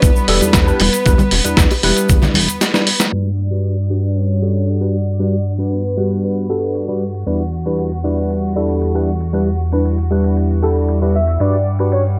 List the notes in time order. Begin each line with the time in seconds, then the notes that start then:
Already playing: G3 B3 D4 E4 B4
0.02 E2 B4, kick, closed hi-hat, shaker
0.16 shaker
0.28 E1 G3 D4 E4 A4, open hi-hat
0.41 E2, closed hi-hat, high bongo, high conga, shaker
0.53 E2, kick, snare, closed hi-hat, shaker
0.67 G3 D4 E4 B4, shaker
0.80 E1, open hi-hat, high bongo, high conga
0.93 closed hi-hat, shaker
1.05 E2 G3 D4 E4 B4, kick, closed hi-hat, shaker
1.18 closed hi-hat, high conga, low conga, shaker
1.31 E1, open hi-hat, high bongo
1.44 E2 G3 D4 E4 B4, closed hi-hat, shaker
1.57 E2, kick, snare, closed hi-hat, shaker
1.71 open hi-hat, high bongo, shaker
1.83 E1 G3 D4 E4 B4, open hi-hat
1.97 closed hi-hat, shaker
2.09 E2, kick, closed hi-hat, shaker
2.22 snare, closed hi-hat, high bongo, low conga, shaker
2.34 E1, open hi-hat, high conga
2.48 E2, closed hi-hat, shaker
2.61 snare, closed hi-hat, high bongo, shaker
2.73 G3 D4 E4 B4, snare, shaker
2.87 open hi-hat
3.00 snare, closed hi-hat, shaker
3.12 G2 G3 D4 F#4 B4 D5 F#5
3.51 G3 D4 F#4 B4, closed hi-hat
3.64 closed hi-hat
3.77 closed hi-hat
3.90 G3 D4 F#4 B4
4.03 closed hi-hat
4.16 C#5, closed hi-hat
4.42 G3 D4 F#4 A4
4.55 closed hi-hat
4.68 D5, closed hi-hat
4.80 G3 D4 F#4 B4
5.07 closed hi-hat
5.19 G3 D4 F#4 B4, closed hi-hat
5.33 closed hi-hat
5.58 G3 D4 F#4 B4, closed hi-hat
5.72 B4, closed hi-hat
5.85 closed hi-hat
5.97 G3 D4 F#4 B4
6.11 closed hi-hat
6.23 B4, closed hi-hat
6.49 G3 D4 F#4 A4
6.62 closed hi-hat
6.75 closed hi-hat
6.88 G3 D4 F#4 B4
7.14 closed hi-hat
7.26 E2 G3 D4 E4 B4, closed hi-hat
7.40 closed hi-hat
7.65 G3 D4 E4 B4, closed hi-hat
7.79 closed hi-hat
7.92 closed hi-hat
8.04 G3 D4 E4 B4
8.17 closed hi-hat
8.30 closed hi-hat
8.56 G3 D4 E4 A4
8.69 closed hi-hat
8.82 closed hi-hat
8.94 G3 D4 E4 B4
9.21 closed hi-hat
9.33 G3 D4 E4 B4, closed hi-hat
9.47 closed hi-hat
9.72 G3 D4 E4 B4, closed hi-hat
9.85 closed hi-hat
9.98 closed hi-hat
10.11 G3 D4 E4 B4
10.24 closed hi-hat
10.37 closed hi-hat
10.62 G3 D4 E4 A4
10.76 closed hi-hat
10.89 closed hi-hat
11.01 G3 D4 E4 B4
11.15 E5
11.27 closed hi-hat
11.40 G2 G3 D4 F#4 B4 D5 F#5, closed hi-hat
11.53 closed hi-hat
11.79 G3 D4 F#4 B4, closed hi-hat
11.92 C#5, closed hi-hat
12.05 closed hi-hat